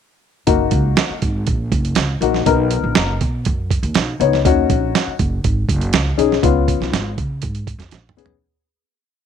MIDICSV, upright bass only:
0, 0, Header, 1, 3, 480
1, 0, Start_track
1, 0, Key_signature, 6, "major"
1, 0, Tempo, 496689
1, 459, Time_signature, 4, 2, 24, 8
1, 8947, End_track
2, 0, Start_track
2, 0, Title_t, "Upright bass"
2, 0, Program_c, 0, 32
2, 454, Note_on_c, 0, 30, 78
2, 662, Note_off_c, 0, 30, 0
2, 694, Note_on_c, 0, 37, 81
2, 903, Note_off_c, 0, 37, 0
2, 1181, Note_on_c, 0, 32, 77
2, 1387, Note_off_c, 0, 32, 0
2, 1426, Note_on_c, 0, 34, 81
2, 1630, Note_off_c, 0, 34, 0
2, 1659, Note_on_c, 0, 30, 85
2, 1866, Note_off_c, 0, 30, 0
2, 1900, Note_on_c, 0, 37, 78
2, 2107, Note_off_c, 0, 37, 0
2, 2133, Note_on_c, 0, 34, 84
2, 2343, Note_off_c, 0, 34, 0
2, 2381, Note_on_c, 0, 35, 94
2, 2690, Note_off_c, 0, 35, 0
2, 2740, Note_on_c, 0, 34, 84
2, 2857, Note_on_c, 0, 30, 78
2, 2872, Note_off_c, 0, 34, 0
2, 3065, Note_off_c, 0, 30, 0
2, 3104, Note_on_c, 0, 47, 93
2, 3309, Note_off_c, 0, 47, 0
2, 3347, Note_on_c, 0, 42, 88
2, 3653, Note_off_c, 0, 42, 0
2, 3698, Note_on_c, 0, 39, 82
2, 3803, Note_off_c, 0, 39, 0
2, 3822, Note_on_c, 0, 35, 80
2, 4028, Note_off_c, 0, 35, 0
2, 4057, Note_on_c, 0, 37, 81
2, 4264, Note_off_c, 0, 37, 0
2, 4299, Note_on_c, 0, 39, 89
2, 4505, Note_off_c, 0, 39, 0
2, 4539, Note_on_c, 0, 34, 77
2, 4745, Note_off_c, 0, 34, 0
2, 5020, Note_on_c, 0, 30, 82
2, 5225, Note_off_c, 0, 30, 0
2, 5260, Note_on_c, 0, 32, 80
2, 5465, Note_off_c, 0, 32, 0
2, 5494, Note_on_c, 0, 30, 82
2, 5702, Note_off_c, 0, 30, 0
2, 5735, Note_on_c, 0, 37, 86
2, 5942, Note_off_c, 0, 37, 0
2, 5974, Note_on_c, 0, 35, 87
2, 6181, Note_off_c, 0, 35, 0
2, 6214, Note_on_c, 0, 37, 91
2, 6523, Note_off_c, 0, 37, 0
2, 6575, Note_on_c, 0, 35, 78
2, 6678, Note_off_c, 0, 35, 0
2, 6685, Note_on_c, 0, 32, 81
2, 6896, Note_off_c, 0, 32, 0
2, 6937, Note_on_c, 0, 49, 87
2, 7142, Note_off_c, 0, 49, 0
2, 7182, Note_on_c, 0, 44, 84
2, 7488, Note_off_c, 0, 44, 0
2, 7524, Note_on_c, 0, 41, 93
2, 7632, Note_off_c, 0, 41, 0
2, 7654, Note_on_c, 0, 34, 82
2, 7861, Note_off_c, 0, 34, 0
2, 7894, Note_on_c, 0, 35, 71
2, 8101, Note_off_c, 0, 35, 0
2, 8947, End_track
3, 0, Start_track
3, 0, Title_t, "Muted upright bass strokes"
3, 1057, Note_on_c, 9, 29, 42
3, 1153, Note_off_c, 9, 29, 0
3, 4895, Note_on_c, 9, 29, 45
3, 4991, Note_off_c, 9, 29, 0
3, 8947, End_track
0, 0, End_of_file